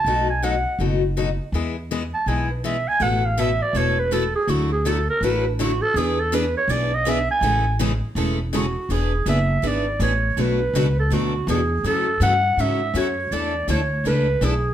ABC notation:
X:1
M:4/4
L:1/16
Q:"Swing" 1/4=163
K:Emix
V:1 name="Clarinet"
a2 g2 f4 z8 | z6 a2 g2 B2 e2 g2 | f2 =f2 e2 d2 c2 B2 A2 G2 | F2 G2 A2 _B2 =B2 D2 F2 A2 |
G2 A2 B2 c2 d2 ^d2 e2 g2- | g4 z8 F4 | G4 e4 d4 c4 | B6 A2 F4 G4 |
A4 f4 e4 c4 | d4 c4 B4 G4 |]
V:2 name="Steel-string acoustic guitar"
z16 | z16 | [A,B,EB]2 z2 [A,B,EB] z3 [A,B,EB]2 z2 [A,B,EB] z3 | [D,F,EA]2 z2 [D,F,EA] z3 [D,F,EA]2 z2 [D,F,EA] z3 |
[E,B,DGB]2 z2 [E,B,DGB] z3 [E,B,DGB]2 z2 [E,B,DGB] z3 | [E,G,CEA]2 z2 [E,G,CEA] z3 [E,G,CEA]2 z2 [E,G,CEA] z3 | [E,B,DGB]2 z2 [E,B,DGB] z3 [E,B,DGB]2 z2 [E,B,DGB] z3 | [B,,F,A,DFB]2 z2 [B,,F,A,DFB] z3 [B,,F,A,DFB]2 z2 [B,,F,A,DFB] z3 |
[F,CEA]2 z2 [F,CEA] z3 [F,CEA]2 z2 [F,CEA] z3 | [E,A,DEA]2 z2 [E,A,DEA] z3 [E,A,DEA]2 z2 [E,A,DEA] z3 |]
V:3 name="Steel-string acoustic guitar"
[B,,F,A,^DF]2 z2 [B,,F,A,DF] z3 [B,,F,A,DF]2 z2 [B,,F,A,DF] z3 | [E,G,B,EG]2 z2 [E,G,B,EG] z3 [E,G,B,EG]2 z2 [E,G,B,EG] z3 | [B,,E,A,EA]2 z2 [B,,E,A,EA] z3 [B,,E,A,EA]2 z2 [B,,E,A,EA] z3 | [D,F,A,EF]2 z2 [D,F,A,EF] z3 [D,F,A,EF]2 z2 [D,F,A,EF] z3 |
[E,B,DG]2 z2 [E,B,DG] z3 [E,B,DG]2 z2 [E,B,DG] z3 | [C,E,A,CG]2 z2 [C,E,A,CG] z3 [C,E,A,CG]2 z2 [C,E,A,CG] z3 | [E,B,DG]2 z2 [E,B,DG] z3 [E,B,DG]2 z2 [E,B,DG] z3 | [B,,F,A,DF]2 z2 [B,,F,A,DF] z3 [B,,F,A,DF]2 z2 [B,,F,A,DF] z3 |
[C,E,A,CF]2 z2 [C,E,A,CF] z3 [C,E,A,CF]2 z2 [C,E,A,CF] z3 | [E,A,DEA]2 z2 [E,A,DEA] z3 [E,A,DEA]2 z2 [E,A,DEA] z3 |]
V:4 name="Upright bass" clef=bass
B,,,8 F,,,8 | E,,8 B,,,8 | A,,,8 E,,,8 | D,,8 A,,,8 |
E,,8 B,,,8 | A,,,8 E,,,8 | E,,,4 F,,,4 G,,,4 A,,,4 | B,,,4 C,,4 D,,4 E,,4 |
F,,4 =G,,4 ^G,,4 F,,4 | E,,4 D,,4 C,,4 B,,,4 |]